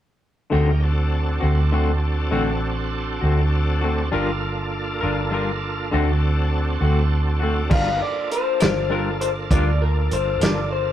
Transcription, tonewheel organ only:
0.53 C#4 D#4 G4 A#4
0.83 C4 D4 F#4 A4
4.12 A#3 D4 F4 A4
5.92 C4 D4 F#4 A4
7.70 B3 D#4 F#4 A#4
8.00 A#3 D4 F4 A4

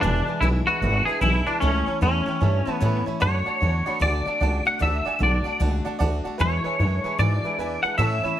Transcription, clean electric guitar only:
0.01 D4
0.41 E4
0.67 F#4
1.05 G#4
1.21 E4
1.47 D4
1.60 C#4
2.02 C#4
2.73 B3
3.22 C#5
4.02 D5
4.67 F#5
4.82 E5
5.23 D5
6.41 C#5
7.19 D5
7.83 F#5
7.98 E5

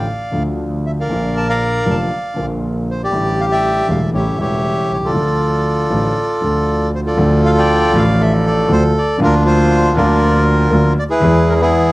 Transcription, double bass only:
0.33 D2
1.10 A#1
1.86 F1
2.37 A#1
3.12 A1
3.88 E1
4.13 A1
4.38 E1
4.90 C2
5.15 D2
5.91 A1
6.42 D2
7.18 D2
7.94 A1
8.71 D2
9.21 D2
9.96 D2
10.71 D2
11.21 E2

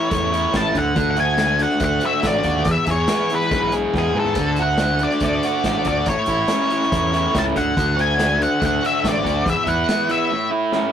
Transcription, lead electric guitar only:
Already playing: C#5
0.56 A5
0.79 F#5
1.11 F#5
1.20 G#5
1.63 F#5
1.85 F#5
2.06 E5
2.27 D5
2.71 E5
2.91 C#5
3.35 B4
3.98 G#4
4.19 A4
4.62 F#5
5.03 D5
5.25 D5
5.88 D5
6.09 C#5
7.39 A5
7.57 F#5
8.01 G#5
8.43 F#5
8.66 F#5
8.86 E5
9.09 D5
9.50 E5
9.68 F#5
10.11 E5

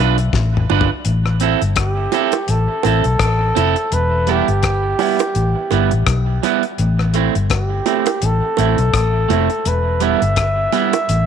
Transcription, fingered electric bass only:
0.00 B1
0.33 A1
0.70 G1
1.06 A1
1.62 G1
2.49 A1
2.85 A1
3.05 B1
3.20 A1
3.56 F1
3.92 E1
4.48 G1
5.36 A1
5.72 G1
5.92 A1
6.07 B1
6.79 A1
7.35 G1
8.23 A1
8.59 A1
8.79 B1
8.94 A1
9.30 F1
9.65 E1
10.22 G1
11.09 A1

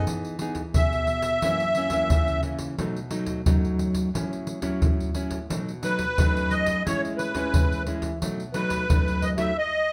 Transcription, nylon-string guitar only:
Already playing: B3 D#4 G#4
0.09 E3
0.41 B3 D#4 G#4
0.76 B2 B3 G#4
1.44 F#2 E3 A#3 C#4
1.77 E3 A#3 C#4
1.92 E3 A#3 C#4
2.12 C#3
2.44 E3 A#3 C#4
2.79 B2 F#3 A3 D#4
3.10 F#3 A3 D#4
3.46 F#2 F#3 A3 D#4
4.14 A2 F#3 C#4 E4
4.62 F#3 C#4 E4
4.82 A2
5.15 F#3 C#4 E4
5.50 B2 F#3 A3 D#4
5.83 F#3 A3 D#4
6.18 F#2 F#3 A3 D#4
6.86 A2 G#3 C#4 E4
7.35 G#3 C#4 E4
7.55 E3
7.87 G#3 C#4 E4
8.22 B2 F#3 A3 D#4
8.55 F#3 A3 D#4
8.89 F#2 F#3 A3 D#4
9.37 F#3 A3 D#4

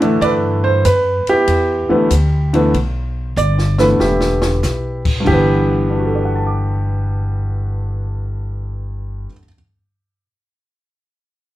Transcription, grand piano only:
0.00 D3 E3 A3 D4
0.22 B4 D5
0.64 C5
0.85 B4
1.29 B3 E4 G4
1.89 D3 E3 A3 B3
2.53 D3 E3 A3 B3
3.37 D5
3.78 D3 E3 A3 B3 B4
4.00 B3 E4 G4
5.20 G2
5.25 D3 E3 G4
5.32 B3
5.90 D4
5.97 F#4
6.06 A4
6.15 D5
6.25 F#5
6.36 A5
6.47 D6

